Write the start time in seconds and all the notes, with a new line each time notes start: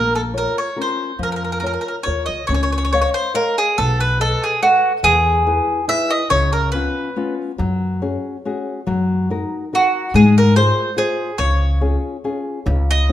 Already playing: A#1 A#3 A#4
0.15 A4
0.34 F4 A#4 C#5
0.38 A#4
0.58 C#5
0.76 C#4 F4 A#4
0.81 C5
1.19 F2 F3
1.23 A#4
1.32 A#4
1.36 A#4
1.44 A#4
1.52 A#4
1.60 F4 A#4 C#5
1.66 A#4
1.73 A#4
1.81 A#4
1.88 A#4
2.03 D#2 F4 A#4 C#5
2.26 C#2 D#5
2.47 C#2 C#4 C#5
2.54 C#5
2.63 C#5
2.72 C#5
2.78 C#5
2.85 C#5
2.93 C#5 D#5 F5
3.01 C#5
3.14 C5
3.34 A#4 C#5 D#5 F5
3.58 G#4
3.78 B1 B3 A4
4.00 B4
4.20 A4 B4 D#5
4.44 G#4
4.62 F#4 A4 B4 D#5
5.03 E2 E3 G#4
5.46 E4 G#4 B4
5.88 E4 G#4 B4 E5
6.11 D#5
6.30 C#2 C#3 C#5
6.53 A#4
6.72 B3 C#4 F4 B4
7.16 B3 C#4 F4
7.58 F#2 F#3
8.02 C#4 F#4 G#4
8.45 C#4 F#4 G#4
8.87 F#2 F#3
9.30 D#4 F#4 A#4
9.73 D#4 F#4 A#4
10.14 G#2 G#3 G#4
10.38 A#4
10.56 F4 G#4 C5
10.96 F4 G#4 C5
11.38 C#2 C#3 C#5
11.81 C#4 F4 G#4
12.24 C#4 F4 G#4
12.66 C#2 C#3
12.91 D#5